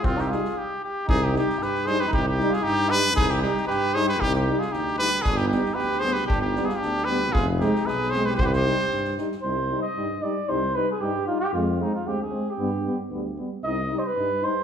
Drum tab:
SD |-ooo----|--oooooo|--oooooo|--oooooo|
BD |o-------|o-------|o-------|o-------|

SD |-o-ooooo|--oooooo|--oooooo|--oooooo|
BD |o-------|o-------|o-------|o-------|

SD |-ooooooo|--------|--------|--------|
BD |o-------|--------|--------|--------|

SD |--------|--------|
BD |--------|--------|